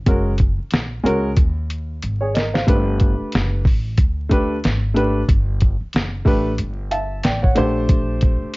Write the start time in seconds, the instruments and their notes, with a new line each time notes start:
0.06 upright bass F#1, grand piano G#3 C#4 F#4 A#4, kick, closed hi-hat
0.38 kick, closed hi-hat
0.58 muted upright bass stroke
0.71 upright bass A#1, snare, closed hi-hat
1.04 upright bass C#2, grand piano G#3 C#4 F#4 A#4, closed hi-hat
1.37 upright bass D#2, kick, closed hi-hat
1.70 closed hi-hat
2.02 upright bass G#1, closed hi-hat
2.21 grand piano G#4 C#5
2.34 grand piano A#4 D#5, snare, closed hi-hat
2.54 grand piano C5 F5, snare
2.67 upright bass G1, grand piano A3 D4 G4 B4, kick, closed hi-hat
3.00 kick, closed hi-hat
3.20 muted upright bass stroke
3.32 upright bass F#1, snare, closed hi-hat
3.65 upright bass A1, kick, open hi-hat
3.97 upright bass D2, kick, closed hi-hat
4.29 grand piano A3 D4 G4 B4, kick, closed hi-hat
4.64 upright bass G#1, snare, closed hi-hat
4.94 grand piano A3 D4 G4 B4, closed hi-hat
5.29 upright bass G1, kick, closed hi-hat
5.60 kick, closed hi-hat
5.81 muted upright bass stroke
5.93 upright bass F#1, snare, closed hi-hat
6.25 upright bass A1, grand piano A3 D4 G4 B4, kick, open hi-hat
6.58 upright bass G1, closed hi-hat
6.91 grand piano E5 A5, closed hi-hat
7.23 upright bass A1, grand piano D5 G5, snare, closed hi-hat
7.42 grand piano C#5 F#5, kick
7.55 upright bass A#1, grand piano A3 D4 G4 C5, closed hi-hat
7.89 kick, closed hi-hat
8.21 kick, closed hi-hat
8.42 muted upright bass stroke
8.54 closed hi-hat